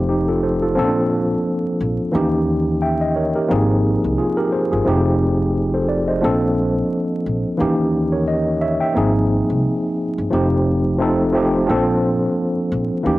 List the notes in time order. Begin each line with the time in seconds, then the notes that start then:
Already playing: F1 F3 A3 C4 D#4 G4 A4 C5
0.09 D#4 G4
0.28 F4 A4
0.43 A4 C5
0.62 F4 A4
0.75 A#1 F3 A#3 C4 C#4 A4
0.84 D4
1.81 A#1
2.12 D#2 E3 A#3 C#4 D#4 G4
2.82 E5 G5
3.01 D#5
3.16 A#4 C#5
3.35 G4 A#4
3.48 G#1 F3 A#3 C4 D#4 G#4
4.04 C2
4.18 F4 G#4
4.37 G4 A#4
4.52 G#4 C5
4.72 G1 F4 G#4
4.85 F1 F3 A3 C4 D#4 G4
5.74 A4 C5
5.89 D5
6.08 C5 D#5
6.21 A#1 F3 A#3 C4 D4 A4
7.26 A#1
7.57 D#2 E3 A#3 C#4 D#4 G4
8.12 A#4 C#5
8.28 D#5
8.61 C#5 E5
8.80 E5 G5
8.94 G#1 F3 A#3 C4 D#4 G#4
9.50 C2
10.18 G1
10.30 F1 F3 A3 C4 D#4 G4
10.98 F3 A3 C4 D#4 A4
11.32 F3 A3 C4 D#4 G4
11.67 A#1 F3 A#3 C4 D4 A4
12.72 A#1
13.03 D#2 E3 A#3 C#4 D#4 G4